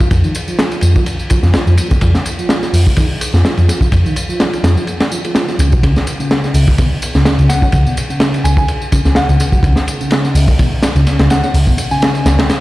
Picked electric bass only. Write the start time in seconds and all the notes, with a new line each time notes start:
0.11 F2
0.82 F2
1.43 F2
1.67 F2
2.02 F2
2.73 F2
3.34 F2
3.58 F2
3.92 F2
4.64 F2
5.59 C#2
5.73 B1
5.84 C#2
6.54 C#2
7.15 C#2
7.38 C#2
7.73 C#2
8.44 C#2
9.05 C#2
9.29 C#2
9.63 C#2
10.35 C#2
10.95 C#2
11.19 C#2
11.54 C#2
12.25 C#2